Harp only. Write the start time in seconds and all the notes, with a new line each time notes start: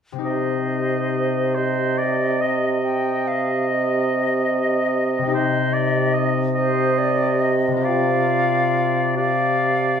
0.12 C3 C4
0.18 D#4 G4
5.18 C3
5.23 C4
5.27 D#4
5.31 G4
7.67 C3
7.72 B3
7.76 F4
7.81 G4